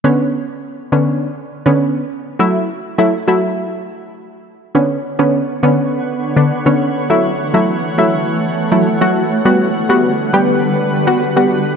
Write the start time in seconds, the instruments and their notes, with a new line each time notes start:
0.04 synth stab D3 B3 C#4
0.92 synth stab D3 B3 C#4
1.66 synth stab D3 B3 C#4
2.39 synth stab F#3 A3 E4
2.98 synth stab F#3 A3 E4
3.27 synth stab F#3 A3 E4
4.75 synth stab D3 B3 C#4, ambient pad D3 B3 C#5 F#5
5.19 synth stab D3 B3 C#4
5.63 synth stab D3 B3 C#4
6.36 synth stab D3 B3 D4
6.66 synth stab D3 B3 C#4
7.10 ambient pad E3 A3, synth stab F#3 A3 E4
7.54 synth stab F#3 A3 E4
7.98 synth stab F#3 A3 E4
8.72 synth stab F#3 A3 E4
9.01 synth stab F#3 A3 F#4
9.45 ambient pad D3 G3 B4, synth stab G3 B3 F#4
9.89 synth stab G3 B3 F#4
10.33 synth stab G3 B3 G4
11.07 synth stab G3 B3 F#4
11.36 synth stab G3 B3 F#4